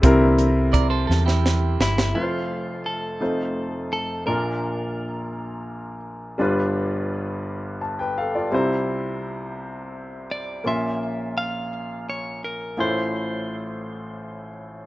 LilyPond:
<<
  \new Staff \with { instrumentName = "Clean electric guitar" } { \time 6/8 \key f \major \tempo 4. = 56 r2 r8 e'8 | f'4 a'4. a'8 | bes'2~ bes'8 r8 | r2. |
r2 r8 d''8 | e''4 f''4 des''8 bes'8 | c''2~ c''8 r8 | }
  \new Staff \with { instrumentName = "Clean electric guitar" } { \time 6/8 \key f \major r4 <bes' d''>16 <a' c''>16 a'16 <e' g'>4~ <e' g'>16 | r2. | r2. | r2. |
r2. | r2. | r2. | }
  \new Staff \with { instrumentName = "Grand piano" } { \time 6/8 \key f \major << { r2. | r2. | r2. | r2 a''16 <b' g''>16 <a' f''>16 <f' d''>16~ |
<f' d''>16 r2 r8. | r2. | r2. | } \\ { <g c' e' bes'>2. | <a f' b' c'' e''>4. <a ees' f' c''>4. | <bes d' f' bes'>2. | <g d' f' b'>2. |
<g c' e' c''>2. | <bes des' f' c'''>2. | <a e' f' c''>2. | } >> }
  \new Staff \with { instrumentName = "Grand piano" } { \clef bass \time 6/8 \key f \major c4. r4. | <f,, f,>4. <f,, f,>4. | <bes,, bes,>2. | <g,, g,>2. |
<c, c>2. | <bes,, bes,>2. | <a,, a,>2. | }
  \new Staff \with { instrumentName = "Tonewheel organ" } { \clef bass \time 6/8 \key f \major <d e bes>8 r2 r8 | r2. | r2. | r2. |
r2. | r2. | r2. | }
  \new Staff \with { instrumentName = "Fingered electric bass" } { \clef bass \time 6/8 \key f \major c,4. e,4 g,,8 | r2. | r2. | r2. |
r2. | r2. | r2. | }
  \new DrumStaff \with { instrumentName = "Drums" } \drummode { \time 6/8 <hh bd>8 hh8 <hh bd>8 sn16 sn16 sn8 sn16 sn16 | r4. r4. | r4. r4. | r4. r4. |
r4. r4. | r4. r4. | r4. r4. | }
>>